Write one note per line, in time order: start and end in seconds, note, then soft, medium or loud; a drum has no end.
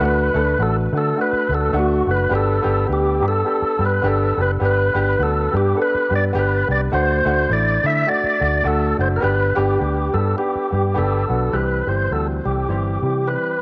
0.00 0.29 D2 loud
0.00 0.26 A3 loud
0.00 0.26 D4 medium
0.00 0.26 F#4 loud
0.05 0.63 B4 loud
0.34 0.54 D2 medium
0.34 0.53 A3 loud
0.34 0.53 D4 medium
0.34 0.53 A4 loud
0.58 0.86 A1 medium
0.58 0.84 A3 medium
0.58 0.84 D4 medium
0.58 0.85 F#4 medium
0.62 0.77 A4 loud
0.93 1.12 D3 loud
0.93 1.11 A3 medium
0.93 1.11 D4 medium
0.93 1.12 F#4 medium
0.97 1.20 A4 loud
1.16 1.42 A3 medium
1.16 1.42 D4 medium
1.16 1.43 F#4 medium
1.21 1.54 B4 medium
1.33 muted fingered electric bass stroke soft
1.49 1.69 D2 medium
1.49 1.68 A3 medium
1.49 1.69 D4 medium
1.49 1.69 F#4 medium
1.54 1.77 A4 medium
1.73 2.01 D2 medium
1.73 1.99 A3 loud
1.73 1.99 D4 medium
1.73 2.00 F#4 loud
1.79 2.11 F#4 medium
2.06 2.27 F#1 medium
2.06 2.25 A3 medium
2.06 2.25 D4 medium
2.06 2.25 F#4 medium
2.11 2.34 B4 medium
2.29 2.59 G1 loud
2.29 2.56 B3 loud
2.29 2.56 D4 medium
2.29 2.57 G4 loud
2.35 2.87 A4 loud
2.62 2.84 G1 medium
2.62 2.82 B3 loud
2.62 2.82 D4 medium
2.62 2.82 G4 loud
2.86 3.22 D2 medium
2.86 3.13 B3 medium
2.86 3.13 D4 medium
2.86 3.14 G4 medium
2.93 3.26 G4 medium
3.20 3.42 G2 loud
3.20 3.39 B3 medium
3.20 3.40 D4 medium
3.20 3.40 G4 medium
3.28 3.85 A4 loud
3.45 3.71 B3 medium
3.45 3.71 D4 medium
3.45 3.72 G4 medium
3.62 muted fingered electric bass stroke soft
3.78 3.99 G2 medium
3.78 3.97 B3 medium
3.78 3.98 D4 medium
3.78 3.98 G4 medium
3.85 4.08 B4 loud
4.02 4.31 G1 medium
4.02 4.29 B3 medium
4.02 4.29 D4 medium
4.02 4.29 G4 loud
4.08 4.41 A4 medium
4.36 4.57 F#1 medium
4.36 4.55 B3 medium
4.36 4.55 D4 medium
4.36 4.56 G4 medium
4.41 4.51 B4 loud
4.60 4.89 G1 loud
4.60 4.86 B3 loud
4.60 4.87 D4 medium
4.60 4.87 G4 loud
4.65 5.23 B4 loud
4.94 5.14 G1 medium
4.94 5.13 B3 medium
4.94 5.13 D4 medium
4.94 5.13 G4 loud
5.19 5.47 D2 medium
5.19 5.44 B3 medium
5.19 5.45 D4 medium
5.19 5.45 F#4 medium
5.23 5.56 A4 loud
5.51 5.73 G2 loud
5.51 5.70 B3 medium
5.51 5.71 D4 medium
5.51 5.71 G4 medium
5.57 5.80 G4 loud
5.75 6.01 B3 medium
5.75 6.01 D4 medium
5.75 6.02 A4 medium
5.82 6.14 B4 loud
5.95 muted fingered electric bass stroke soft
6.10 6.30 G2 medium
6.10 6.28 B3 medium
6.10 6.29 D4 medium
6.10 6.29 G4 medium
6.16 6.25 D5 loud
6.33 6.62 G1 medium
6.33 6.59 B3 loud
6.33 6.60 D4 medium
6.33 6.60 G4 loud
6.39 6.68 B4 medium
6.67 6.88 C2 medium
6.67 6.86 B3 medium
6.67 6.86 D4 medium
6.67 6.86 G4 medium
6.67 6.81 D5 loud
6.92 7.20 D2 loud
6.92 7.17 A3 loud
6.92 7.17 D4 medium
6.92 7.18 F#4 loud
6.92 7.52 C5 loud
7.25 7.45 D2 medium
7.25 7.43 A3 loud
7.25 7.44 D4 medium
7.25 7.44 F#4 loud
7.49 7.77 A1 medium
7.49 7.74 A3 medium
7.49 7.75 D4 medium
7.49 7.75 E4 medium
7.53 7.86 D5 loud
7.83 8.03 D3 loud
7.83 8.01 A3 medium
7.83 8.01 D4 medium
7.83 8.02 E4 medium
7.83 8.09 E5 loud
8.06 8.32 A3 medium
8.06 8.33 D4 medium
8.06 8.33 F#4 medium
8.06 8.67 D5 loud
8.24 muted fingered electric bass stroke soft
8.40 8.60 D2 medium
8.40 8.58 A3 medium
8.40 8.58 D4 medium
8.40 8.59 F#4 medium
8.64 8.92 D2 medium
8.64 8.90 A3 medium
8.64 8.90 D4 medium
8.64 8.90 F#4 loud
8.64 8.98 A4 medium
8.98 9.18 F#1 medium
8.98 9.16 A3 medium
8.98 9.16 D4 medium
8.98 9.17 F#4 medium
8.98 9.08 C5 medium
9.16 9.22 A#4 medium
9.20 9.50 G1 loud
9.20 9.47 B3 loud
9.20 9.47 D4 medium
9.20 9.48 G4 loud
9.20 9.58 B4 loud
9.55 9.76 G1 medium
9.55 9.73 B3 loud
9.55 9.74 D4 medium
9.55 10.15 G4 medium
9.55 9.74 G4 loud
9.79 10.08 D2 medium
9.79 10.05 B3 medium
9.79 10.05 D4 medium
9.79 10.05 G4 medium
10.13 10.33 G2 loud
10.13 10.31 B3 medium
10.13 10.32 D4 medium
10.13 10.32 G4 medium
10.13 10.36 A4 loud
10.37 10.63 B3 medium
10.37 10.63 D4 medium
10.37 11.25 G4 medium
10.37 10.63 G4 medium
10.55 muted fingered electric bass stroke soft
10.70 10.98 G2 medium
10.70 10.89 B3 medium
10.70 10.89 D4 medium
10.70 10.90 G4 medium
10.94 11.23 G1 medium
10.94 11.20 B3 medium
10.94 11.20 D4 medium
10.94 11.21 G4 loud
10.94 11.56 A4 medium
11.28 11.49 B1 medium
11.28 11.47 B3 medium
11.28 11.47 D4 medium
11.28 11.47 F#4 medium
11.52 11.81 C2 medium
11.52 11.78 E3 medium
11.52 11.78 G3 medium
11.52 11.78 C4 medium
11.52 11.78 G4 medium
11.52 11.88 B4 medium
11.86 12.06 G1 medium
11.86 12.04 E3 medium
11.86 12.05 G3 medium
11.86 12.05 C4 medium
11.86 12.05 G4 medium
11.86 12.12 C5 medium
12.11 12.39 D2 medium
12.11 12.37 E3 medium
12.11 12.37 G3 medium
12.11 12.37 C4 medium
12.11 12.37 F#4 medium
12.11 12.27 A4 medium
12.44 12.65 C2 medium
12.44 12.62 E3 medium
12.44 12.63 G3 medium
12.44 12.63 C4 medium
12.44 13.29 G4 medium
12.44 12.63 G4 medium
12.69 12.96 G1 medium
12.69 12.94 E3 medium
12.69 12.94 G3 medium
12.69 12.95 C4 medium
12.69 12.95 G4 loud
13.03 13.36 C3 medium
13.03 13.21 E3 medium
13.03 13.21 G3 medium
13.03 13.21 C4 medium
13.03 13.21 G4 medium
13.26 13.52 E3 medium
13.26 13.52 G3 medium
13.26 13.52 C4 medium
13.26 13.52 G4 medium
13.26 13.62 B4 medium